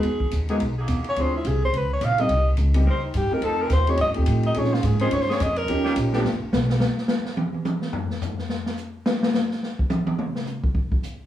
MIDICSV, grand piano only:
0, 0, Header, 1, 2, 480
1, 0, Start_track
1, 0, Tempo, 281955
1, 70, Time_signature, 4, 2, 24, 8
1, 19174, End_track
2, 0, Start_track
2, 0, Title_t, "Grand piano"
2, 0, Program_c, 0, 0
2, 842, Note_on_c, 0, 56, 64
2, 845, Note_on_c, 0, 63, 58
2, 847, Note_on_c, 0, 59, 57
2, 850, Note_on_c, 0, 66, 52
2, 867, Note_on_c, 0, 70, 70
2, 1014, Note_off_c, 0, 56, 0
2, 1016, Note_off_c, 0, 63, 0
2, 1017, Note_off_c, 0, 59, 0
2, 1018, Note_off_c, 0, 66, 0
2, 1027, Note_off_c, 0, 70, 0
2, 1990, Note_on_c, 0, 53, 59
2, 2000, Note_on_c, 0, 64, 51
2, 2002, Note_on_c, 0, 60, 50
2, 2002, Note_on_c, 0, 62, 56
2, 2016, Note_on_c, 0, 68, 63
2, 2252, Note_off_c, 0, 53, 0
2, 2257, Note_off_c, 0, 64, 0
2, 2258, Note_off_c, 0, 60, 0
2, 2258, Note_off_c, 0, 62, 0
2, 2265, Note_off_c, 0, 68, 0
2, 3729, Note_on_c, 0, 55, 64
2, 3734, Note_on_c, 0, 58, 57
2, 3738, Note_on_c, 0, 60, 60
2, 3749, Note_on_c, 0, 70, 70
2, 3750, Note_on_c, 0, 63, 63
2, 3899, Note_off_c, 0, 55, 0
2, 3902, Note_off_c, 0, 58, 0
2, 3904, Note_off_c, 0, 60, 0
2, 3909, Note_off_c, 0, 70, 0
2, 3910, Note_off_c, 0, 63, 0
2, 4674, Note_on_c, 0, 55, 70
2, 4682, Note_on_c, 0, 60, 59
2, 4686, Note_on_c, 0, 58, 61
2, 4691, Note_on_c, 0, 63, 64
2, 4700, Note_on_c, 0, 67, 70
2, 4851, Note_off_c, 0, 55, 0
2, 4856, Note_off_c, 0, 60, 0
2, 4857, Note_off_c, 0, 58, 0
2, 4860, Note_off_c, 0, 63, 0
2, 4865, Note_off_c, 0, 67, 0
2, 5626, Note_on_c, 0, 53, 55
2, 5641, Note_on_c, 0, 60, 54
2, 5642, Note_on_c, 0, 57, 51
2, 5646, Note_on_c, 0, 63, 54
2, 5654, Note_on_c, 0, 65, 71
2, 6268, Note_off_c, 0, 53, 0
2, 6275, Note_off_c, 0, 60, 0
2, 6276, Note_off_c, 0, 57, 0
2, 6278, Note_off_c, 0, 63, 0
2, 6282, Note_off_c, 0, 65, 0
2, 6598, Note_on_c, 0, 53, 58
2, 6600, Note_on_c, 0, 57, 59
2, 6606, Note_on_c, 0, 60, 54
2, 6609, Note_on_c, 0, 63, 60
2, 6619, Note_on_c, 0, 67, 66
2, 6773, Note_off_c, 0, 53, 0
2, 6774, Note_off_c, 0, 57, 0
2, 6777, Note_off_c, 0, 60, 0
2, 6779, Note_off_c, 0, 63, 0
2, 6784, Note_off_c, 0, 67, 0
2, 7061, Note_on_c, 0, 53, 64
2, 7070, Note_on_c, 0, 57, 61
2, 7080, Note_on_c, 0, 60, 52
2, 7081, Note_on_c, 0, 63, 57
2, 7090, Note_on_c, 0, 67, 67
2, 7705, Note_off_c, 0, 53, 0
2, 7709, Note_off_c, 0, 57, 0
2, 7715, Note_off_c, 0, 60, 0
2, 7715, Note_off_c, 0, 63, 0
2, 7720, Note_off_c, 0, 67, 0
2, 7750, Note_on_c, 0, 53, 63
2, 7757, Note_on_c, 0, 60, 57
2, 7762, Note_on_c, 0, 61, 56
2, 7764, Note_on_c, 0, 63, 62
2, 7774, Note_on_c, 0, 68, 82
2, 8011, Note_off_c, 0, 53, 0
2, 8015, Note_off_c, 0, 60, 0
2, 8017, Note_off_c, 0, 61, 0
2, 8019, Note_off_c, 0, 63, 0
2, 8023, Note_off_c, 0, 68, 0
2, 8515, Note_on_c, 0, 60, 63
2, 8521, Note_on_c, 0, 61, 59
2, 8522, Note_on_c, 0, 53, 71
2, 8531, Note_on_c, 0, 63, 67
2, 8539, Note_on_c, 0, 70, 80
2, 8691, Note_off_c, 0, 60, 0
2, 8694, Note_off_c, 0, 53, 0
2, 8694, Note_off_c, 0, 61, 0
2, 8699, Note_off_c, 0, 63, 0
2, 8703, Note_off_c, 0, 70, 0
2, 9667, Note_on_c, 0, 53, 57
2, 9670, Note_on_c, 0, 58, 51
2, 9682, Note_on_c, 0, 61, 61
2, 9684, Note_on_c, 0, 63, 58
2, 9691, Note_on_c, 0, 67, 67
2, 10380, Note_off_c, 0, 53, 0
2, 10382, Note_off_c, 0, 58, 0
2, 10388, Note_off_c, 0, 61, 0
2, 10389, Note_off_c, 0, 63, 0
2, 10392, Note_off_c, 0, 67, 0
2, 10429, Note_on_c, 0, 53, 73
2, 10434, Note_on_c, 0, 57, 62
2, 10445, Note_on_c, 0, 59, 66
2, 10451, Note_on_c, 0, 62, 67
2, 10457, Note_on_c, 0, 67, 75
2, 10608, Note_off_c, 0, 53, 0
2, 10610, Note_off_c, 0, 57, 0
2, 10615, Note_off_c, 0, 59, 0
2, 10618, Note_off_c, 0, 62, 0
2, 10621, Note_off_c, 0, 67, 0
2, 19174, End_track
0, 0, End_of_file